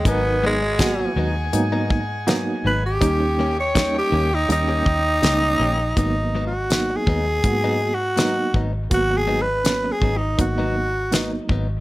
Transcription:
<<
  \new Staff \with { instrumentName = "Horn section" } { \time 4/4 \key gis \minor \tempo 4 = 81 <gis' fis'' gis''>1 | <cis'' dis'' g''>1 | r1 | r1 | }
  \new Staff \with { instrumentName = "Tenor saxophone" } { \time 4/4 \key gis \minor b8 gis4 r2 b'16 g'16~ | g'8. cis''8 g'8 dis'16 dis'2 | \tuplet 3/2 { dis'4 fis'8~ fis'8 gis'4~ gis'4 fis'8~ } fis'8 r8 | \tuplet 3/2 { fis'8 gis'8 b'8~ b'8 gis'8 dis'8 } fis'4. r8 | }
  \new Staff \with { instrumentName = "Reed electric piano" } { \time 4/4 \key gis \minor <fis b dis' ais'>8 r8 <fis ais b fis'>8 r8 <fis ais b dis'>8 r8 <fis ais b dis'>8 r8 | <g ais cis' dis'>8 r8 <g ais cis' dis'>8 r8 <g ais cis' dis'>8 r8 <g ais cis' dis'>8 r8 | <fis ais b dis'>8 r8 <fis ais b dis'>8 r8 <fis ais b fis'>8 r8 <fis ais b dis'>8 r8 | <fis ais b fis'>8 r8 <fis ais b cis'>8 r8 <fis ais b dis'>8 r8 <fis ais b dis'>8 r8 | }
  \new Staff \with { instrumentName = "Clean electric guitar" } { \time 4/4 \key gis \minor <gis, fis b dis'>16 r16 <gis, fis b dis'>16 r8. <gis, fis b dis'>16 r8 <gis, fis b dis'>16 r8 <gis, fis b dis'>16 r16 <gis, fis b dis'>16 r16 | <dis ais cis' g'>16 r16 <dis ais cis' g'>16 r8. <dis ais cis' g'>16 r8 <dis ais cis' g'>16 r8 <dis ais cis' g'>16 r16 <dis ais cis' g'>16 r16 | <gis, fis b dis'>16 r16 <gis, fis b dis'>16 r8. <gis, fis b dis'>16 r8 <gis, fis b dis'>16 r8 <gis, fis b dis'>16 r16 <gis, fis b dis'>16 r16 | r8 <gis, fis b dis'>16 r8. <gis, fis b dis'>16 r8 <gis, fis b dis'>16 r8 <gis, fis b dis'>16 r16 <gis, fis b dis'>16 r16 | }
  \new Staff \with { instrumentName = "Fingered electric bass" } { \clef bass \time 4/4 \key gis \minor gis,,4. dis,8 gis,4. gis,,8 | dis,4. dis,8 dis,8 dis,8 cis,8 ais,,8 | gis,,4. dis,8 gis,4. gis,,8 | gis,,4. gis,,8 gis,,4. gis,,8 | }
  \new DrumStaff \with { instrumentName = "Drums" } \drummode { \time 4/4 <hh bd>4 <hh bd sn>4 hh8 bd8 <hh sn>4 | <hh bd>4 <hh bd sn>4 hh8 bd8 <hh sn>4 | <hh bd>4 <hh sn>8 bd8 <hh bd>4 <hh sn>8 bd8 | <hh bd>4 <hh sn>8 bd8 <hh bd>4 <hh sn>8 bd8 | }
>>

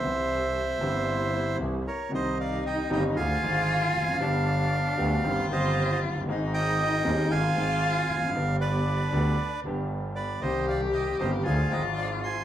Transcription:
<<
  \new Staff \with { instrumentName = "Bandoneon" } { \time 4/4 \key c \phrygian \tempo 4 = 116 << { e''2. r8 des''8 | \key c \minor ees''8 f''8 g''8 g''8 aes''2 | r2 r8 ees''4 r8 | r8 g''4. aes''2 |
r8 d''2 r4 d''8 | ees''8 f''8 g''8 ees''8 aes''8 g''8 f''8 c'''8 | } \\ { c''2. r8 bes'8 | c''8 d''8 ees''8 ees''8 f''2~ | f''2~ f''8 c''4 r8 | r8 ees''4. f''2~ |
f''8 b'2 r4 b'8 | c''8 d''8 ees''8 c''8 f''8 ees''8 d''8 aes''8 | } >> }
  \new Staff \with { instrumentName = "Cello" } { \time 4/4 \key c \phrygian c'4 c'4 e'4. r8 | \key c \minor ees'2 f'2 | d'2 f'2 | ees'2 f'2 |
d'2.~ d'8 r8 | g'2 f'2 | }
  \new Staff \with { instrumentName = "Grand piano" } { \clef bass \time 4/4 \key c \phrygian << { <c, c e g e'>4. <g,, g, c e g e'>4. <c, c e g e'>8 r8 | \key c \minor <c, c ees g ees'>4. <g,, g, c ees g ees'>8 <d, d f aes f'>8 <aes,, aes, d f aes f'>4. | <g,, g, d g b g'>4. <d, d g b g'>8 <g,, g, ees g c' g'>8 <g,, g, ees g c' g'>4. | <aes,, aes, ees aes c' aes'>4. <ees,, ees, ees aes c' aes'>8 <aes,, aes, ees aes c' f'>8 <aes,, aes, ees aes c' f'>4. |
<g,, g, d g b g'>4. <d, d g b g'>8 r8 <g,, g, d g b g'>4. | <c, c ees g c' g'>4. <g,, g, ees g c' g'>8 <d, d f aes d' aes'>8 <aes,, aes, f aes d' aes'>4. | } \\ { r1 | r2. r8 r32 e,32 f,32 fis,32 | r2. r8 r32 f,,32 fis,,32 g,,32 | r2. r8 r32 e,32 f,32 fis,32 |
r1 | r1 | } >> }
  \new Staff \with { instrumentName = "Double bass" } { \clef bass \time 4/4 \key c \phrygian c,4. g,,4. c,8 r8 | \key c \minor c,4. g,,8 d,8 aes,,4 f,,8 | g,,4. d,8 g,,8 g,,4 fis,,8 | aes,,4. ees,8 aes,,8 aes,,4 f,,8 |
g,,4. d,8 r8 g,,4. | c,4. g,,8 d,8 aes,,4. | }
>>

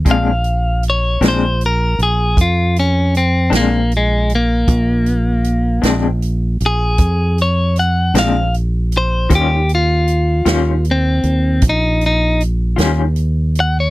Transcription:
<<
  \new Staff \with { instrumentName = "Clean electric guitar" } { \time 12/8 \key bes \dorian \tempo 4. = 52 f''4 des''8 c''8 bes'8 aes'8 f'8 des'8 c'8 bes8 aes8 bes8~ | bes4. r4 aes'4 des''8 ges''8 f''8 r8 c''8 | g'8 f'4. c'4 ees'8 ees'8 r4. ges''16 des''16 | }
  \new Staff \with { instrumentName = "Clean electric guitar" } { \time 12/8 \key bes \dorian <bes, aes c' d'>8 r4 <bes, aes c' d'>8 r2 r8 <bes, aes c' d'>8 r4 | r4. <bes, aes c' d'>8 r2 r8 <bes, aes c' d'>8 r4 | <ees g des' f'>8 r4 <ees g des' f'>8 r2 r8 <ees g des' f'>8 r4 | }
  \new Staff \with { instrumentName = "Fingered electric bass" } { \clef bass \time 12/8 \key bes \dorian bes,,4. bes,,4 bes,,8 f,4. bes,,4. | bes,,4. bes,,4 bes,,8 f,4. bes,,4. | ees,4. ees,4 ees,8 bes,,4. ees,4. | }
  \new DrumStaff \with { instrumentName = "Drums" } \drummode { \time 12/8 <hh bd>8 hh8 hh8 <hh sn>8 hh8 hh8 <hh bd>8 hh8 hh8 <hh sn>8 hh8 hh8 | <hh bd>8 hh8 hh8 <hh sn>8 hh8 hh8 <hh bd>8 hh8 hh8 <hh sn>8 hh8 hh8 | <hh bd>8 hh8 hh8 <hh sn>8 hh8 hh8 <hh bd>8 hh8 hh8 <hh sn>8 hh8 hh8 | }
>>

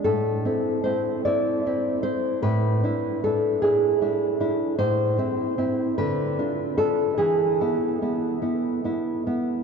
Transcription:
\new Staff \with { instrumentName = "Nylon-string guitar" } { \time 6/8 \key a \minor \tempo 4. = 50 << { a'4 c''8 d''4 c''8 | b'4 a'8 gis'4. | c''4. b'4 a'8 | gis'2~ gis'8 r8 | } \\ { a,8 <c' e'>8 <c' e'>8 <c' e'>8 <c' e'>8 <c' e'>8 | a,8 <d' e'>8 <d' e'>8 <d' e'>8 <d' e'>8 <d' e'>8 | a,8 <c' e'>8 <c' e'>8 d8 <d' f'>8 <d' f'>8 | e8 <b e'>8 <b e'>8 <b e'>8 <b e'>8 <b e'>8 | } >> }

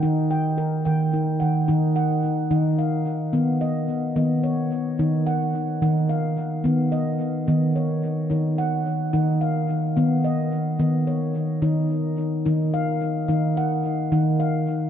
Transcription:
<<
  \new Staff \with { instrumentName = "Handpan" } { \time 6/8 \key ees \minor \tempo 4. = 72 << { ges''8 g''4 g''4 ges''8~ | ges''8 ges''4. f''4~ | f''8 dis''4. des''4~ | des''8 ges''4. f''4~ |
f''8 dis''4. des''4~ | des''8 ges''4. f''4~ | f''8 dis''4. des''4~ | des''8 r4. f''4~ |
f''8 ges''4. f''4 | } \\ { ees'4 bes'4 ees'4 | ees'4 r8 ees'4 r8 | b4 r8 b4 r8 | ees'4 r8 ees'4 r8 |
b4 r8 b4 r8 | ees'4 r8 ees'4 r8 | b4 r8 b4 r8 | ees'4 r8 ees'4 r8 |
ees'4 r8 ees'4 r8 | } >> }
  \new Staff \with { instrumentName = "Handpan" } { \clef bass \time 6/8 \key ees \minor ees4. ees4 ees8 | ees4. ees4. | dis4. dis4. | ees4. ees4. |
dis4. dis4. | ees4. ees4. | dis4. dis4. | ees4. ees4. |
ees4. ees4. | }
>>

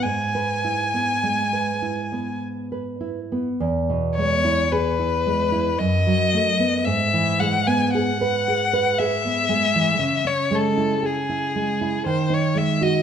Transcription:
<<
  \new Staff \with { instrumentName = "Violin" } { \time 3/4 \key e \major \tempo 4 = 56 gis''2 r4 | r8 cis''8 b'4 dis''4 | e''8 fis''16 gis''16 fis''4 e''4~ | e''16 cis''16 a'8 gis'4 c''16 cis''16 e''16 dis''16 | }
  \new Staff \with { instrumentName = "Nylon-string guitar" } { \time 3/4 \key e \major gis,16 b'16 e'16 b16 gis16 b'16 e'16 b8 b'16 e'16 b16 | e,16 b,16 gis16 e'16 gis'16 e'16 gis16 e'16 fis,16 fis16 a16 b16 | gis,16 e16 gis16 b16 gis'16 b'16 gis'16 b'16 gis'16 b16 gis16 e16 | cis16 cis'16 gis16 e'16 gis'16 e'16 gis16 e'16 dis16 dis'16 gis16 fis'16 | }
>>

